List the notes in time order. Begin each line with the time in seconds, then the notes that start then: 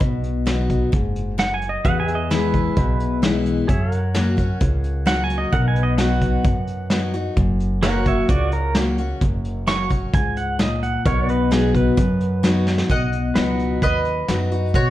Already playing: F#4 B4 D#5
0.00 B1 B2, kick, closed hi-hat
0.23 closed hi-hat
0.46 F#3 B3 D#4 F#4, snare, closed hi-hat
0.70 kick, closed hi-hat
0.92 F#1 G#2, kick, closed hi-hat
1.16 closed hi-hat
1.38 F#2 F#5, snare, closed hi-hat
1.54 G#5
1.62 closed hi-hat
1.69 D#5
1.84 E2 F#4 B4 D#5 F#5, kick, closed hi-hat
2.00 G#5
2.07 G#4 E5, closed hi-hat
2.15 D#5
2.30 E3 G#3 B3 E4 B4, snare, closed hi-hat
2.54 kick, closed hi-hat
2.77 B1 B2, kick, closed hi-hat
3.00 closed hi-hat
3.22 E3 G#3 B3 E4, snare, closed hi-hat
3.46 closed hi-hat
3.68 F#2 G#4 C#5 E5, kick, closed hi-hat
3.92 A#4 F#5, closed hi-hat
4.14 F#3 A#3 C#4 F#4, snare, closed hi-hat
4.37 C#4 F#4, kick, closed hi-hat
4.61 C#2 C#3, kick, closed hi-hat
4.84 closed hi-hat
5.06 F#3 A#3 C#4 F#4 F#5, snare, closed hi-hat
5.24 G#5
5.30 closed hi-hat
5.38 D#5
5.52 B1 B2 A#4 D#5 F#5, kick, closed hi-hat
5.68 G#5
5.74 B4, closed hi-hat
5.83 D#5
5.97 F#3 B3 D#4 F#4 F#5, snare, closed hi-hat
6.21 kick, closed hi-hat
6.44 F#2, kick, closed hi-hat
6.67 closed hi-hat
6.90 F#3 B3 D#4 F#4, snare, closed hi-hat
7.14 D#4 F#4, closed hi-hat
7.37 F#1 F#2, kick, closed hi-hat
7.60 closed hi-hat
7.83 F#3 A#3 C#4 F#4 A#4 B4 C#5 F#5, snare, closed hi-hat
8.03 A#4 C#5, kick, closed hi-hat
8.08 E5
8.28 C#2 C#3 F#4 D5, kick, closed hi-hat
8.52 A#4, closed hi-hat
8.75 F#3 A#3 C#4 F#4, snare, closed hi-hat
8.98 C#4 F#4, closed hi-hat
9.21 F#1 F#2, kick, closed hi-hat
9.45 closed hi-hat
9.67 F#3 A#3 C#4 F#4 C#6, snare, closed hi-hat
9.90 C#4 F#4, kick, closed hi-hat
10.14 C#2 G#2 G#5, kick, closed hi-hat
10.37 F#5, closed hi-hat
10.59 A#2 D#5, snare, closed hi-hat
10.83 F#5, closed hi-hat
11.05 B1 B2 A#4 C#5 F#5, kick, closed hi-hat
11.26 B4, closed hi-hat
11.32 D#5
11.51 F#3 B3 D#4 F#4 G#4, snare, closed hi-hat
11.75 B4, kick, closed hi-hat
11.97 F#2, kick, closed hi-hat
12.21 closed hi-hat
12.43 F#3 B3 D#4 F#4, snare, closed hi-hat
12.67 snare
12.78 snare
12.89 B1 B2 D#5 F#5, kick, closed hi-hat
13.13 closed hi-hat
13.35 C#2 F#3 B3 D#4 F#4 B4 D#5 F#5, snare, closed hi-hat
13.59 closed hi-hat
13.82 D#2 F#2 B4 D#5, kick, closed hi-hat
14.05 closed hi-hat
14.28 F#2 F#3 B3 D#4 F#4, snare, closed hi-hat
14.51 D#4 F#4, closed hi-hat
14.74 B2 F#4 C#5, kick, closed hi-hat